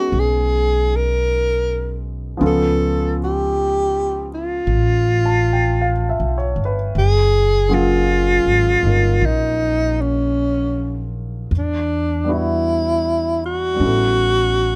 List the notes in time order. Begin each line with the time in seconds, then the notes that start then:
Already playing: G#3 B3 C#4 D#4 F#4 G#4 A#4
0.12 B1
0.20 G#4
0.96 A#4
2.37 C#2 F3 B3 C#4
2.41 F4 A4
2.47 A4
3.24 G4
4.35 F4
4.67 A1
5.26 A5
5.53 G5
5.81 F5
6.09 E5
6.20 B1
6.38 C#5
6.56 G1
6.65 B4
6.95 F#1 G#4
7.69 F#3 A#3 C#4 F4 G#4
7.74 F4
8.46 G#1
8.83 G1 A#3 D#4 A#4
9.21 A#1
9.26 D#4
10.01 C#4
11.51 E2
11.58 D4
12.24 G3 B3 D4
12.29 E4 F#4
12.33 E4
13.46 F#4
13.74 G3 B3
13.80 A1 C#4 E4
13.85 A4